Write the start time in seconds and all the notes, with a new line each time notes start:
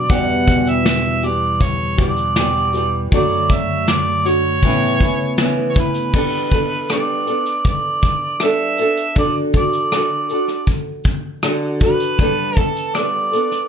Already playing: B2 D5
0.09 E2 B2 E3 G3 B3 G4 F#5, kick, shaker
0.48 kick, tambourine, shaker
0.67 E5, shaker
0.86 snare, tambourine, shaker
1.23 E3 G3 B3 G4 D5, tambourine, shaker
1.61 C#5, kick, tambourine, shaker
1.98 E3 G3 B3 G4 D5, kick, tambourine, shaker
2.17 shaker
2.36 E3 G3 B3 G4, snare, tambourine, shaker
2.73 E3 G3 B3 G4, tambourine, shaker
3.12 F#2 D3 F#3 A3 D4 F#4 D5, kick, shaker
3.50 E5, kick, tambourine, shaker
3.87 D5, snare, tambourine, shaker
4.25 A3 D4 F#4 C#5, tambourine, shaker
4.62 A2 C#3 E3 B3 C#4 E4, kick, tambourine, shaker
5.00 C#4 E4, kick, tambourine, shaker
5.05 B3
5.38 E3 B3 C#4, snare, tambourine, shaker
5.42 E4
5.69 C#5
5.74 C#4 E4, kick, tambourine, shaker
5.79 B3 B4
5.95 shaker
6.13 G3 B3 D4 A4, kick, crash
6.50 B3 A4, kick, tambourine, shaker
6.55 D4
6.89 G3 B3 D4 D5, cross-stick, tambourine, shaker
6.93 A4
7.27 B3 D4 A4, tambourine, shaker
7.46 shaker
7.65 D5, kick, tambourine, shaker
8.02 kick, tambourine, shaker
8.40 G3 B3 D4 A4 E5, cross-stick, tambourine, shaker
8.77 B3 A4, tambourine, shaker
8.82 D4
8.97 shaker
9.15 D3 D4 F#4 A4 D5, kick, shaker
9.54 D4 F#4 A4 D5, kick, tambourine, shaker
9.73 shaker
9.92 D3 D4 F#4 A4, cross-stick, tambourine, shaker
10.30 D4 F#4 A4, tambourine, shaker
10.48 cross-stick
10.67 kick, tambourine, shaker
11.04 kick, tambourine, shaker
11.43 D3 D4 F#4 A4, cross-stick, tambourine, shaker
11.80 F#4 A4 B4, kick, tambourine, shaker
11.84 D4
12.00 shaker
12.19 G3 B3 D4 A4, kick, tambourine, shaker
12.57 B3 D4 A4, kick, shaker
12.77 shaker
12.95 G3 B3 D4 A4 D5, cross-stick, tambourine, shaker
13.32 B3 D4 A4, tambourine, shaker
13.52 cross-stick, shaker